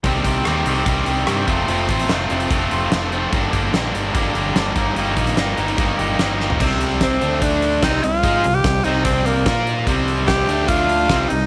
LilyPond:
<<
  \new Staff \with { instrumentName = "Tenor saxophone" } { \time 4/4 \key c \dorian \tempo 4 = 147 r1 | r1 | r1 | r1 |
r4 c'4 d'4 ees'8 f'8~ | f'8. g'8. ees'8 c'8 bes4 r8 | r4 g'4 f'4. ees'8 | }
  \new Staff \with { instrumentName = "Distorted electric guitar" } { \time 4/4 \key c \dorian <c ees g c' g'>8 <g c' g'>8 <c ees g c' g'>8 <g c' g'>8 <ees g c' g'>8 <c ees g c' g'>8 <ees g c' g'>8 <f, c f a c' f'>8 | <f, c f a c' f'>8 <f a c' f'>8 <f, c f a c' f'>8 <f a c' f'>8 <f a c' f'>8 <f, c f a c' f'>8 <f a c' f'>8 <f a c' f'>8 | <g, d g bes d' g'>8 <g bes d' g'>8 <g, d g bes d' g'>8 <g bes d' g'>8 <g bes d' g'>8 <g, d g bes d' g'>8 <g bes d' g'>8 <g bes ees' g'>8 | <g bes ees' g'>8 <bes ees' g'>8 <g bes ees' g'>8 <bes ees' g'>8 <g bes ees' g'>8 <g bes ees' g'>8 <g bes ees' g'>8 <bes ees' g'>8 |
<c g c'>4. <d a d'>4. <c g c'>8 <c g>8 | <aes ees' aes'>8 <c g>8 <c g>8 <c g c'>4. <bes f' bes'>4 | <c g c'>4. <d a d'>4. <c g c'>8 <c g>8 | }
  \new Staff \with { instrumentName = "Overdriven electric guitar" } { \time 4/4 \key c \dorian <c ees g c' g'>8 <g c' g'>8 <ees g c' g'>8 <g c' g'>8 <c ees g c' g'>4 <ees g c' g'>8 <f a c' f'>8 | <f a c' f'>8 <a c' f'>8 <f a c' f'>8 <a c' f'>8 <f a c' f'>4 <f a c' f'>8 <a c' f'>8 | <g, d g bes d'>8 <g bes d'>8 <d g bes d'>8 <g bes d'>8 <g, d g bes d'>4 <d g bes d'>8 <g, ees g bes ees'>8 | <g, ees g bes ees'>8 <g bes ees'>8 <ees g bes ees'>8 <g bes ees'>8 <g, ees g bes ees'>4 <ees g bes ees'>8 <g bes ees'>8 |
<c g c'>4. <d a d'>4. <c g c'>8 <c g>8 | <aes ees' aes'>8 <c g>8 <c g>8 <c g c'>4. <bes f' bes'>4 | <c g c'>4. <d a d'>4. <c g c'>8 <c g>8 | }
  \new Staff \with { instrumentName = "Fingered electric bass" } { \clef bass \time 4/4 \key c \dorian c,8 c,8 ees,8 c,8 c,8 c,8 g,8 f,,8 | f,,8 a,,8 f,,8 f,,8 f,,8 f,,8 f,,4 | g,,8 g,,8 bes,,8 g,,8 g,,8 g,,8 g,,8 g,,8 | g,,8 bes,,8 g,,8 g,,8 g,,8 g,,8 g,,4 |
c,4. d,4. c,8 c,8 | aes,8 c,8 c,8 c,4. bes,4 | c,4. d,4. c,8 c,8 | }
  \new DrumStaff \with { instrumentName = "Drums" } \drummode { \time 4/4 <hh bd>8 <hh bd>8 <hh ss>8 hh8 <hh bd>8 hh8 <hh ss>8 <hh bd>8 | hh8 <hh bd>16 hh16 <hh sn>8 hh16 hh16 <hh bd>8 hh8 <hh sn>8 hh8 | <hh bd>8 <hh bd>8 <hh sn>8 hh8 <hh bd>8 hh8 <hh sn>8 <hh bd>8 | hh8 <hh bd>16 hh16 <hh sn>8 hh16 hh16 <hh bd>8 hh8 <hh sn>8 sn16 tomfh16 |
<cymc bd>8 hh8 <hh bd sn>8 hh8 <hh bd>8 hh8 <hh bd sn>8 hh8 | <hh bd>8 hh8 <hh bd sn>8 hh8 <hh bd>8 hh8 <hh bd sn>8 hh8 | <hh bd>8 hh8 <hh bd sn>8 hh8 <hh bd>8 hh8 <hh bd sn>8 hh8 | }
>>